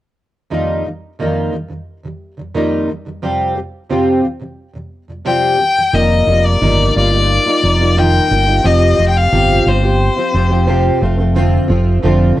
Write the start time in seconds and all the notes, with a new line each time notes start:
0.50 F2 D#3 G3 A#3 D#4 F4
0.84 F2 D#3 G3
1.19 F2 D#3 G3 A#3 D#4 F4
1.52 F2 D#3 G3
1.69 F2 D#3 G3
2.03 F2 D#3 G3
2.37 F2 D#3 G3
2.55 F2 D#3 G3 A#3 D#4 F4
2.88 F2 D#3 G3
3.05 F2 D#3 G3
3.22 F2 C3 G3 C4 F4 G4
3.56 F2 C3 G3
3.90 F2 C3 G3 C4 F4 G4
4.23 F2 C3 G3
4.40 F2 C3 G3
4.74 F2 C3 G3
5.08 F2 C3 G3
5.25 F2 C3 G3 C4 F4 G4 G5
5.58 F2 D#3 G3
5.76 F2 D#3 G3
5.93 F1 F2 D#3 G3 A#3 D#4 F4 D#5
6.26 F1 G3 A#3 D#4 F4
6.45 D5
6.61 G1 F2 D#3 G3 A#3 D#4 F4
6.95 G1 G3 A#3 D#4 F4 D5
7.12 G3 A#3 D#4 F4
7.46 G3 A#3 D#4 F4
7.62 F1 G3 A#3 D#4 F4
7.79 G3 A#3 D#4 F4
7.97 F2 D#3 G3 A#3 D#4 F4 G5
8.29 G1 G3 A#3 D#4 F4
8.47 G3 A#3 D#4 F4
8.63 F1 F2 C3 F3 C4 F4 G4 D#5
8.98 F1 F3 C4 F4 G4
9.08 G5
9.17 F5
9.31 G1 F2 C3 F3 C4 F4 G4
9.66 G1 F3 C4 F4 G4 C5
9.83 F3 C4 F4 G4
10.16 F3 C4 F4 G4
10.33 F1 F3 C4 F4 G4
10.50 F3 C4 F4 G4
10.67 F2 C3 F3 C4 F4 G4
11.01 F1 F3 A3 C4 F4
11.18 F3 A3 C4 F4
11.35 F2 D3 F3 A3 C4 F4
11.68 F1 F3 A3 C4 F4
12.02 F1 F2 D3 F3 A3 C4 F4
12.36 F3